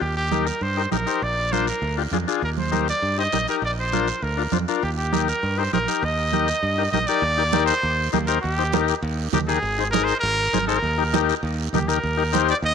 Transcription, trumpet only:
0.01 0.15 G4 medium
0.17 0.47 G4 medium
0.46 0.64 A#4 medium
0.62 0.91 C5 medium
0.92 1.24 A#4 medium
1.23 1.54 D5 loud
1.52 1.67 C5 medium
1.68 1.96 A#4 medium
2.44 2.50 A#4 medium
2.59 2.86 C5 medium
2.90 3.17 D5 loud
3.19 3.46 D#5 loud
3.50 3.56 A#4 medium
3.65 3.71 D5 medium
3.80 4.25 C5 medium
4.23 4.53 A#4 medium
4.83 4.90 G4 medium
4.97 5.25 G4 medium
5.28 5.60 A#4 medium
5.58 5.72 C5 medium
5.73 6.06 A#4 medium
6.04 6.91 D#5 medium
6.92 7.08 D#5 medium
7.07 7.65 D5 loud
7.66 8.09 C5 loud
8.27 8.41 A#4 medium
8.42 8.98 G4 medium
9.33 9.40 G4 medium
9.47 9.90 G#4 medium
9.91 10.06 A#4 loud
10.04 10.19 C5 loud
10.20 10.63 A#4 loud
10.67 11.24 A#4 loud
11.74 11.90 G4 medium
11.88 12.49 A#4 loud
12.50 12.57 D5 loud
12.65 12.74 D#5 loud

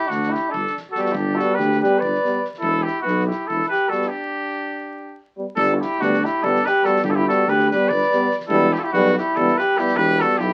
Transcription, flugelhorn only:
0.07 0.31 D4 medium
0.29 0.51 E4 medium
0.49 0.74 D4 medium
0.91 1.03 F#4 medium
1.03 1.14 F#4 medium
1.12 1.37 D4 medium
1.36 1.58 F#4 medium
1.56 1.79 G4 medium
1.79 2.00 G4 medium
1.98 2.46 B4 medium
2.59 2.83 E4 medium
2.83 3.03 E4 medium
3.03 3.26 B3 medium
3.27 3.47 E4 medium
3.47 3.70 E4 medium
3.70 3.91 G4 medium
3.90 4.08 F#4 medium
4.07 5.18 D4 medium
5.57 5.76 D4 medium
5.74 5.83 F#4 medium
5.81 6.03 E4 medium
6.01 6.26 D4 medium
6.25 6.45 E4 medium
6.44 6.69 D4 medium
6.68 6.87 G4 medium
6.86 7.03 F#4 medium
7.04 7.12 D4 medium
7.10 7.17 F#4 medium
7.16 7.26 E4 medium
7.27 7.50 F#4 medium
7.48 7.71 G4 medium
7.72 7.90 G4 medium
7.89 8.35 B4 medium
8.48 8.74 E4 medium
8.74 8.81 E4 medium
8.79 8.85 F#4 medium
8.84 8.93 E4 medium
8.93 9.16 B3 medium
9.18 9.39 E4 medium
9.39 9.61 E4 medium
9.59 9.80 G4 medium
9.79 9.99 E4 medium
9.97 10.22 G4 medium
10.20 10.42 F#4 medium
10.40 10.53 E4 medium

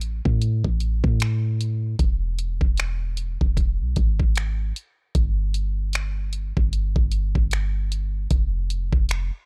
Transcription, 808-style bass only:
0.00 0.21 A1 loud
0.26 0.63 A2 loud
0.65 1.02 A1 loud
1.04 1.95 A2 loud
1.99 2.59 E1 loud
2.61 3.37 E1 medium
3.41 3.82 E1 loud
3.80 3.96 B1 loud
3.97 4.72 G#1 loud
5.15 6.52 G1 loud
6.57 6.94 G1 loud
6.96 7.34 G1 loud
7.35 8.27 G1 loud
8.31 8.91 F1 loud
8.93 9.31 F1 loud

